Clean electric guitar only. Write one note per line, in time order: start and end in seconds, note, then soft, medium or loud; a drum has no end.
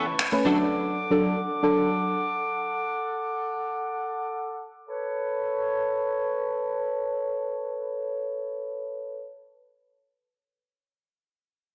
0.00 0.14 E3 medium
0.06 muted clean electric guitar stroke soft
0.19 muted clean electric guitar stroke soft
0.32 muted clean electric guitar stroke soft
0.45 0.66 A3 medium
0.45 0.58 D4 medium
0.45 0.58 F#4 medium
0.45 0.57 A4 medium
0.58 muted clean electric guitar stroke soft